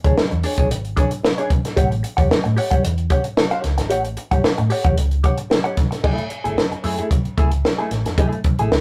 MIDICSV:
0, 0, Header, 1, 6, 480
1, 0, Start_track
1, 0, Tempo, 533808
1, 1592, Time_signature, 4, 2, 24, 8
1, 7919, End_track
2, 0, Start_track
2, 0, Title_t, "Hollow-body jazz guitar"
2, 0, Program_c, 0, 26
2, 39, Note_on_c, 0, 73, 66
2, 49, Note_on_c, 0, 68, 61
2, 57, Note_on_c, 0, 62, 51
2, 134, Note_off_c, 0, 73, 0
2, 139, Note_off_c, 0, 68, 0
2, 143, Note_off_c, 0, 62, 0
2, 393, Note_on_c, 0, 62, 61
2, 402, Note_on_c, 0, 68, 66
2, 410, Note_on_c, 0, 73, 76
2, 499, Note_off_c, 0, 62, 0
2, 504, Note_off_c, 0, 68, 0
2, 508, Note_off_c, 0, 73, 0
2, 522, Note_on_c, 0, 73, 64
2, 530, Note_on_c, 0, 68, 60
2, 538, Note_on_c, 0, 62, 52
2, 615, Note_off_c, 0, 73, 0
2, 619, Note_off_c, 0, 68, 0
2, 623, Note_off_c, 0, 62, 0
2, 868, Note_on_c, 0, 62, 76
2, 878, Note_on_c, 0, 68, 81
2, 885, Note_on_c, 0, 73, 83
2, 976, Note_off_c, 0, 62, 0
2, 981, Note_off_c, 0, 68, 0
2, 985, Note_off_c, 0, 73, 0
2, 1241, Note_on_c, 0, 73, 80
2, 1252, Note_on_c, 0, 68, 79
2, 1258, Note_on_c, 0, 62, 68
2, 1349, Note_off_c, 0, 62, 0
2, 1356, Note_off_c, 0, 68, 0
2, 1359, Note_off_c, 0, 73, 0
2, 1587, Note_on_c, 0, 67, 81
2, 1597, Note_on_c, 0, 73, 73
2, 1603, Note_on_c, 0, 78, 85
2, 1708, Note_off_c, 0, 78, 0
2, 1718, Note_off_c, 0, 73, 0
2, 1724, Note_off_c, 0, 67, 0
2, 1950, Note_on_c, 0, 78, 70
2, 1958, Note_on_c, 0, 73, 64
2, 1966, Note_on_c, 0, 67, 55
2, 2049, Note_off_c, 0, 78, 0
2, 2053, Note_off_c, 0, 73, 0
2, 2057, Note_off_c, 0, 67, 0
2, 2307, Note_on_c, 0, 67, 66
2, 2317, Note_on_c, 0, 73, 73
2, 2321, Note_on_c, 0, 78, 81
2, 2415, Note_off_c, 0, 67, 0
2, 2420, Note_off_c, 0, 73, 0
2, 2423, Note_off_c, 0, 78, 0
2, 2433, Note_on_c, 0, 78, 81
2, 2440, Note_on_c, 0, 73, 72
2, 2449, Note_on_c, 0, 67, 61
2, 2530, Note_off_c, 0, 78, 0
2, 2533, Note_off_c, 0, 73, 0
2, 2538, Note_off_c, 0, 67, 0
2, 2789, Note_on_c, 0, 67, 72
2, 2798, Note_on_c, 0, 73, 84
2, 2805, Note_on_c, 0, 78, 82
2, 2897, Note_off_c, 0, 67, 0
2, 2901, Note_off_c, 0, 73, 0
2, 2904, Note_off_c, 0, 78, 0
2, 3158, Note_on_c, 0, 78, 96
2, 3165, Note_on_c, 0, 73, 83
2, 3176, Note_on_c, 0, 67, 71
2, 3258, Note_off_c, 0, 67, 0
2, 3265, Note_off_c, 0, 73, 0
2, 3268, Note_off_c, 0, 78, 0
2, 3504, Note_on_c, 0, 67, 78
2, 3513, Note_on_c, 0, 73, 80
2, 3520, Note_on_c, 0, 78, 90
2, 3624, Note_off_c, 0, 78, 0
2, 3636, Note_off_c, 0, 73, 0
2, 3642, Note_off_c, 0, 67, 0
2, 3878, Note_on_c, 0, 78, 66
2, 3887, Note_on_c, 0, 73, 58
2, 3892, Note_on_c, 0, 67, 62
2, 3972, Note_off_c, 0, 78, 0
2, 3977, Note_off_c, 0, 73, 0
2, 3979, Note_off_c, 0, 67, 0
2, 4226, Note_on_c, 0, 67, 68
2, 4238, Note_on_c, 0, 73, 74
2, 4243, Note_on_c, 0, 78, 79
2, 4335, Note_off_c, 0, 67, 0
2, 4341, Note_off_c, 0, 73, 0
2, 4343, Note_off_c, 0, 78, 0
2, 4355, Note_on_c, 0, 78, 74
2, 4364, Note_on_c, 0, 73, 67
2, 4372, Note_on_c, 0, 67, 58
2, 4451, Note_off_c, 0, 78, 0
2, 4455, Note_off_c, 0, 73, 0
2, 4459, Note_off_c, 0, 67, 0
2, 4709, Note_on_c, 0, 67, 62
2, 4720, Note_on_c, 0, 73, 71
2, 4725, Note_on_c, 0, 78, 72
2, 4816, Note_off_c, 0, 67, 0
2, 4822, Note_off_c, 0, 73, 0
2, 4824, Note_off_c, 0, 78, 0
2, 5072, Note_on_c, 0, 78, 78
2, 5079, Note_on_c, 0, 73, 64
2, 5086, Note_on_c, 0, 67, 62
2, 5176, Note_off_c, 0, 67, 0
2, 5183, Note_off_c, 0, 73, 0
2, 5188, Note_off_c, 0, 78, 0
2, 5428, Note_on_c, 0, 57, 85
2, 5436, Note_on_c, 0, 64, 83
2, 5442, Note_on_c, 0, 68, 82
2, 5547, Note_off_c, 0, 68, 0
2, 5561, Note_off_c, 0, 64, 0
2, 5615, Note_off_c, 0, 57, 0
2, 5793, Note_on_c, 0, 68, 62
2, 5800, Note_on_c, 0, 64, 54
2, 5807, Note_on_c, 0, 57, 50
2, 5890, Note_off_c, 0, 68, 0
2, 5894, Note_off_c, 0, 64, 0
2, 5897, Note_off_c, 0, 57, 0
2, 6148, Note_on_c, 0, 57, 62
2, 6157, Note_on_c, 0, 64, 67
2, 6167, Note_on_c, 0, 68, 68
2, 6256, Note_off_c, 0, 57, 0
2, 6261, Note_off_c, 0, 64, 0
2, 6266, Note_off_c, 0, 68, 0
2, 6279, Note_on_c, 0, 68, 68
2, 6289, Note_on_c, 0, 64, 62
2, 6296, Note_on_c, 0, 57, 59
2, 6373, Note_off_c, 0, 68, 0
2, 6378, Note_off_c, 0, 64, 0
2, 6382, Note_off_c, 0, 57, 0
2, 6632, Note_on_c, 0, 57, 73
2, 6640, Note_on_c, 0, 64, 73
2, 6648, Note_on_c, 0, 68, 70
2, 6738, Note_off_c, 0, 57, 0
2, 6742, Note_off_c, 0, 64, 0
2, 6746, Note_off_c, 0, 68, 0
2, 6999, Note_on_c, 0, 68, 75
2, 7010, Note_on_c, 0, 64, 68
2, 7016, Note_on_c, 0, 57, 70
2, 7106, Note_off_c, 0, 57, 0
2, 7113, Note_off_c, 0, 64, 0
2, 7120, Note_off_c, 0, 68, 0
2, 7359, Note_on_c, 0, 57, 84
2, 7368, Note_on_c, 0, 64, 84
2, 7377, Note_on_c, 0, 68, 90
2, 7482, Note_off_c, 0, 68, 0
2, 7495, Note_off_c, 0, 64, 0
2, 7540, Note_off_c, 0, 57, 0
2, 7727, Note_on_c, 0, 68, 71
2, 7738, Note_on_c, 0, 64, 69
2, 7744, Note_on_c, 0, 57, 57
2, 7817, Note_off_c, 0, 68, 0
2, 7823, Note_off_c, 0, 64, 0
2, 7826, Note_off_c, 0, 57, 0
2, 7919, End_track
3, 0, Start_track
3, 0, Title_t, "Fingered electric bass"
3, 0, Program_c, 1, 33
3, 42, Note_on_c, 1, 38, 87
3, 140, Note_off_c, 1, 38, 0
3, 284, Note_on_c, 1, 40, 93
3, 382, Note_off_c, 1, 40, 0
3, 522, Note_on_c, 1, 35, 80
3, 620, Note_off_c, 1, 35, 0
3, 639, Note_on_c, 1, 32, 94
3, 847, Note_off_c, 1, 32, 0
3, 1594, Note_on_c, 1, 33, 117
3, 1804, Note_off_c, 1, 33, 0
3, 1963, Note_on_c, 1, 40, 84
3, 2060, Note_off_c, 1, 40, 0
3, 2205, Note_on_c, 1, 45, 100
3, 2301, Note_off_c, 1, 45, 0
3, 2441, Note_on_c, 1, 43, 65
3, 2539, Note_off_c, 1, 43, 0
3, 2552, Note_on_c, 1, 40, 83
3, 2762, Note_off_c, 1, 40, 0
3, 3273, Note_on_c, 1, 37, 89
3, 3384, Note_off_c, 1, 37, 0
3, 3400, Note_on_c, 1, 32, 85
3, 3517, Note_off_c, 1, 32, 0
3, 3517, Note_on_c, 1, 33, 126
3, 3725, Note_off_c, 1, 33, 0
3, 3880, Note_on_c, 1, 43, 79
3, 3979, Note_off_c, 1, 43, 0
3, 4122, Note_on_c, 1, 45, 91
3, 4219, Note_off_c, 1, 45, 0
3, 4361, Note_on_c, 1, 40, 77
3, 4459, Note_off_c, 1, 40, 0
3, 4471, Note_on_c, 1, 37, 86
3, 4682, Note_off_c, 1, 37, 0
3, 5432, Note_on_c, 1, 30, 114
3, 5543, Note_off_c, 1, 30, 0
3, 5801, Note_on_c, 1, 31, 92
3, 5899, Note_off_c, 1, 31, 0
3, 5911, Note_on_c, 1, 30, 83
3, 6023, Note_off_c, 1, 30, 0
3, 6150, Note_on_c, 1, 42, 96
3, 6263, Note_off_c, 1, 42, 0
3, 6633, Note_on_c, 1, 37, 86
3, 6843, Note_off_c, 1, 37, 0
3, 7113, Note_on_c, 1, 33, 90
3, 7224, Note_off_c, 1, 33, 0
3, 7238, Note_on_c, 1, 29, 89
3, 7338, Note_off_c, 1, 29, 0
3, 7356, Note_on_c, 1, 30, 114
3, 7466, Note_off_c, 1, 30, 0
3, 7718, Note_on_c, 1, 33, 85
3, 7818, Note_off_c, 1, 33, 0
3, 7833, Note_on_c, 1, 37, 98
3, 7919, Note_off_c, 1, 37, 0
3, 7919, End_track
4, 0, Start_track
4, 0, Title_t, "Muted fingered electric bass strokes"
4, 2076, Note_on_c, 9, 29, 50
4, 2166, Note_off_c, 9, 29, 0
4, 3997, Note_on_c, 9, 29, 46
4, 4087, Note_off_c, 9, 29, 0
4, 6523, Note_on_c, 9, 29, 46
4, 6612, Note_off_c, 9, 29, 0
4, 7919, End_track
5, 0, Start_track
5, 0, Title_t, "Muted hollow-body jazz guitar strokes"
5, 159, Note_on_c, 9, 29, 45
5, 248, Note_off_c, 9, 29, 0
5, 280, Note_on_c, 9, 29, 46
5, 370, Note_off_c, 9, 29, 0
5, 634, Note_on_c, 9, 29, 48
5, 724, Note_off_c, 9, 29, 0
5, 1000, Note_on_c, 9, 29, 53
5, 1090, Note_off_c, 9, 29, 0
5, 1110, Note_on_c, 9, 29, 37
5, 1200, Note_off_c, 9, 29, 0
5, 1360, Note_on_c, 9, 29, 53
5, 1450, Note_off_c, 9, 29, 0
5, 1485, Note_on_c, 9, 29, 37
5, 1575, Note_off_c, 9, 29, 0
5, 1718, Note_on_c, 9, 29, 46
5, 1808, Note_off_c, 9, 29, 0
5, 1825, Note_on_c, 9, 29, 38
5, 1915, Note_off_c, 9, 29, 0
5, 2067, Note_on_c, 9, 29, 39
5, 2157, Note_off_c, 9, 29, 0
5, 2192, Note_on_c, 9, 29, 45
5, 2282, Note_off_c, 9, 29, 0
5, 2549, Note_on_c, 9, 29, 50
5, 2639, Note_off_c, 9, 29, 0
5, 2919, Note_on_c, 9, 29, 41
5, 3009, Note_off_c, 9, 29, 0
5, 3030, Note_on_c, 9, 29, 32
5, 3120, Note_off_c, 9, 29, 0
5, 3269, Note_on_c, 9, 29, 50
5, 3359, Note_off_c, 9, 29, 0
5, 3396, Note_on_c, 9, 29, 58
5, 3486, Note_off_c, 9, 29, 0
5, 3635, Note_on_c, 9, 29, 42
5, 3725, Note_off_c, 9, 29, 0
5, 3750, Note_on_c, 9, 29, 41
5, 3840, Note_off_c, 9, 29, 0
5, 3990, Note_on_c, 9, 29, 52
5, 4080, Note_off_c, 9, 29, 0
5, 4119, Note_on_c, 9, 29, 54
5, 4209, Note_off_c, 9, 29, 0
5, 4472, Note_on_c, 9, 29, 46
5, 4562, Note_off_c, 9, 29, 0
5, 4836, Note_on_c, 9, 29, 40
5, 4926, Note_off_c, 9, 29, 0
5, 4947, Note_on_c, 9, 29, 45
5, 5037, Note_off_c, 9, 29, 0
5, 5187, Note_on_c, 9, 29, 36
5, 5277, Note_off_c, 9, 29, 0
5, 5312, Note_on_c, 9, 29, 46
5, 5402, Note_off_c, 9, 29, 0
5, 5558, Note_on_c, 9, 29, 34
5, 5648, Note_off_c, 9, 29, 0
5, 5670, Note_on_c, 9, 29, 37
5, 5760, Note_off_c, 9, 29, 0
5, 5910, Note_on_c, 9, 29, 46
5, 6000, Note_off_c, 9, 29, 0
5, 6039, Note_on_c, 9, 29, 47
5, 6129, Note_off_c, 9, 29, 0
5, 6394, Note_on_c, 9, 29, 43
5, 6484, Note_off_c, 9, 29, 0
5, 6761, Note_on_c, 9, 29, 51
5, 6851, Note_off_c, 9, 29, 0
5, 6875, Note_on_c, 9, 29, 34
5, 6965, Note_off_c, 9, 29, 0
5, 7117, Note_on_c, 9, 29, 41
5, 7207, Note_off_c, 9, 29, 0
5, 7249, Note_on_c, 9, 29, 50
5, 7338, Note_off_c, 9, 29, 0
5, 7493, Note_on_c, 9, 29, 38
5, 7583, Note_off_c, 9, 29, 0
5, 7606, Note_on_c, 9, 29, 39
5, 7695, Note_off_c, 9, 29, 0
5, 7855, Note_on_c, 9, 29, 36
5, 7919, Note_off_c, 9, 29, 0
5, 7919, End_track
6, 0, Start_track
6, 0, Title_t, "Drums"
6, 40, Note_on_c, 9, 36, 90
6, 40, Note_on_c, 9, 42, 50
6, 130, Note_off_c, 9, 36, 0
6, 130, Note_off_c, 9, 42, 0
6, 158, Note_on_c, 9, 38, 101
6, 248, Note_off_c, 9, 38, 0
6, 282, Note_on_c, 9, 42, 32
6, 372, Note_off_c, 9, 42, 0
6, 391, Note_on_c, 9, 46, 89
6, 480, Note_off_c, 9, 46, 0
6, 518, Note_on_c, 9, 42, 45
6, 520, Note_on_c, 9, 36, 85
6, 608, Note_off_c, 9, 42, 0
6, 609, Note_off_c, 9, 36, 0
6, 640, Note_on_c, 9, 42, 100
6, 730, Note_off_c, 9, 42, 0
6, 762, Note_on_c, 9, 42, 35
6, 852, Note_off_c, 9, 42, 0
6, 873, Note_on_c, 9, 36, 89
6, 875, Note_on_c, 9, 42, 80
6, 963, Note_off_c, 9, 36, 0
6, 965, Note_off_c, 9, 42, 0
6, 997, Note_on_c, 9, 42, 54
6, 1087, Note_off_c, 9, 42, 0
6, 1120, Note_on_c, 9, 38, 103
6, 1210, Note_off_c, 9, 38, 0
6, 1242, Note_on_c, 9, 42, 35
6, 1332, Note_off_c, 9, 42, 0
6, 1352, Note_on_c, 9, 36, 99
6, 1352, Note_on_c, 9, 42, 80
6, 1442, Note_off_c, 9, 36, 0
6, 1442, Note_off_c, 9, 42, 0
6, 1482, Note_on_c, 9, 42, 61
6, 1485, Note_on_c, 9, 38, 34
6, 1572, Note_off_c, 9, 42, 0
6, 1575, Note_off_c, 9, 38, 0
6, 1592, Note_on_c, 9, 36, 111
6, 1595, Note_on_c, 9, 42, 95
6, 1682, Note_off_c, 9, 36, 0
6, 1685, Note_off_c, 9, 42, 0
6, 1725, Note_on_c, 9, 42, 38
6, 1815, Note_off_c, 9, 42, 0
6, 1834, Note_on_c, 9, 42, 61
6, 1924, Note_off_c, 9, 42, 0
6, 1960, Note_on_c, 9, 36, 90
6, 1964, Note_on_c, 9, 42, 49
6, 2050, Note_off_c, 9, 36, 0
6, 2054, Note_off_c, 9, 42, 0
6, 2080, Note_on_c, 9, 38, 108
6, 2170, Note_off_c, 9, 38, 0
6, 2205, Note_on_c, 9, 42, 31
6, 2295, Note_off_c, 9, 42, 0
6, 2316, Note_on_c, 9, 46, 81
6, 2406, Note_off_c, 9, 46, 0
6, 2440, Note_on_c, 9, 36, 91
6, 2442, Note_on_c, 9, 42, 55
6, 2530, Note_off_c, 9, 36, 0
6, 2532, Note_off_c, 9, 42, 0
6, 2559, Note_on_c, 9, 42, 109
6, 2649, Note_off_c, 9, 42, 0
6, 2678, Note_on_c, 9, 42, 35
6, 2768, Note_off_c, 9, 42, 0
6, 2789, Note_on_c, 9, 42, 78
6, 2791, Note_on_c, 9, 36, 78
6, 2878, Note_off_c, 9, 42, 0
6, 2881, Note_off_c, 9, 36, 0
6, 2914, Note_on_c, 9, 42, 52
6, 3004, Note_off_c, 9, 42, 0
6, 3033, Note_on_c, 9, 38, 106
6, 3123, Note_off_c, 9, 38, 0
6, 3156, Note_on_c, 9, 42, 33
6, 3246, Note_off_c, 9, 42, 0
6, 3272, Note_on_c, 9, 42, 75
6, 3277, Note_on_c, 9, 38, 35
6, 3362, Note_off_c, 9, 42, 0
6, 3367, Note_off_c, 9, 38, 0
6, 3398, Note_on_c, 9, 42, 58
6, 3401, Note_on_c, 9, 38, 38
6, 3488, Note_off_c, 9, 42, 0
6, 3491, Note_off_c, 9, 38, 0
6, 3511, Note_on_c, 9, 42, 94
6, 3601, Note_off_c, 9, 42, 0
6, 3638, Note_on_c, 9, 42, 39
6, 3728, Note_off_c, 9, 42, 0
6, 3749, Note_on_c, 9, 42, 69
6, 3839, Note_off_c, 9, 42, 0
6, 3880, Note_on_c, 9, 36, 83
6, 3880, Note_on_c, 9, 42, 50
6, 3970, Note_off_c, 9, 36, 0
6, 3970, Note_off_c, 9, 42, 0
6, 3995, Note_on_c, 9, 38, 99
6, 4085, Note_off_c, 9, 38, 0
6, 4117, Note_on_c, 9, 42, 34
6, 4207, Note_off_c, 9, 42, 0
6, 4228, Note_on_c, 9, 46, 81
6, 4318, Note_off_c, 9, 46, 0
6, 4355, Note_on_c, 9, 42, 50
6, 4358, Note_on_c, 9, 36, 94
6, 4445, Note_off_c, 9, 42, 0
6, 4448, Note_off_c, 9, 36, 0
6, 4474, Note_on_c, 9, 42, 97
6, 4564, Note_off_c, 9, 42, 0
6, 4598, Note_on_c, 9, 42, 37
6, 4688, Note_off_c, 9, 42, 0
6, 4711, Note_on_c, 9, 42, 72
6, 4712, Note_on_c, 9, 36, 86
6, 4801, Note_off_c, 9, 42, 0
6, 4802, Note_off_c, 9, 36, 0
6, 4834, Note_on_c, 9, 42, 58
6, 4924, Note_off_c, 9, 42, 0
6, 4957, Note_on_c, 9, 38, 122
6, 5047, Note_off_c, 9, 38, 0
6, 5082, Note_on_c, 9, 42, 32
6, 5172, Note_off_c, 9, 42, 0
6, 5190, Note_on_c, 9, 42, 85
6, 5192, Note_on_c, 9, 36, 97
6, 5195, Note_on_c, 9, 38, 38
6, 5280, Note_off_c, 9, 42, 0
6, 5282, Note_off_c, 9, 36, 0
6, 5285, Note_off_c, 9, 38, 0
6, 5324, Note_on_c, 9, 42, 54
6, 5327, Note_on_c, 9, 38, 37
6, 5414, Note_off_c, 9, 42, 0
6, 5417, Note_off_c, 9, 38, 0
6, 5431, Note_on_c, 9, 36, 105
6, 5431, Note_on_c, 9, 49, 86
6, 5521, Note_off_c, 9, 36, 0
6, 5521, Note_off_c, 9, 49, 0
6, 5557, Note_on_c, 9, 42, 38
6, 5647, Note_off_c, 9, 42, 0
6, 5667, Note_on_c, 9, 42, 61
6, 5756, Note_off_c, 9, 42, 0
6, 5802, Note_on_c, 9, 42, 45
6, 5892, Note_off_c, 9, 42, 0
6, 5917, Note_on_c, 9, 38, 91
6, 6007, Note_off_c, 9, 38, 0
6, 6043, Note_on_c, 9, 42, 31
6, 6133, Note_off_c, 9, 42, 0
6, 6149, Note_on_c, 9, 46, 80
6, 6239, Note_off_c, 9, 46, 0
6, 6281, Note_on_c, 9, 42, 46
6, 6371, Note_off_c, 9, 42, 0
6, 6392, Note_on_c, 9, 36, 103
6, 6397, Note_on_c, 9, 42, 94
6, 6482, Note_off_c, 9, 36, 0
6, 6487, Note_off_c, 9, 42, 0
6, 6521, Note_on_c, 9, 42, 35
6, 6611, Note_off_c, 9, 42, 0
6, 6633, Note_on_c, 9, 36, 77
6, 6634, Note_on_c, 9, 42, 73
6, 6723, Note_off_c, 9, 36, 0
6, 6724, Note_off_c, 9, 42, 0
6, 6758, Note_on_c, 9, 42, 52
6, 6848, Note_off_c, 9, 42, 0
6, 6879, Note_on_c, 9, 38, 108
6, 6969, Note_off_c, 9, 38, 0
6, 7113, Note_on_c, 9, 42, 81
6, 7118, Note_on_c, 9, 38, 36
6, 7203, Note_off_c, 9, 42, 0
6, 7208, Note_off_c, 9, 38, 0
6, 7244, Note_on_c, 9, 42, 56
6, 7247, Note_on_c, 9, 38, 37
6, 7334, Note_off_c, 9, 42, 0
6, 7337, Note_off_c, 9, 38, 0
6, 7354, Note_on_c, 9, 36, 116
6, 7356, Note_on_c, 9, 42, 93
6, 7443, Note_off_c, 9, 36, 0
6, 7446, Note_off_c, 9, 42, 0
6, 7486, Note_on_c, 9, 42, 37
6, 7576, Note_off_c, 9, 42, 0
6, 7591, Note_on_c, 9, 42, 68
6, 7594, Note_on_c, 9, 36, 105
6, 7681, Note_off_c, 9, 42, 0
6, 7684, Note_off_c, 9, 36, 0
6, 7721, Note_on_c, 9, 42, 49
6, 7811, Note_off_c, 9, 42, 0
6, 7840, Note_on_c, 9, 38, 111
6, 7919, Note_off_c, 9, 38, 0
6, 7919, End_track
0, 0, End_of_file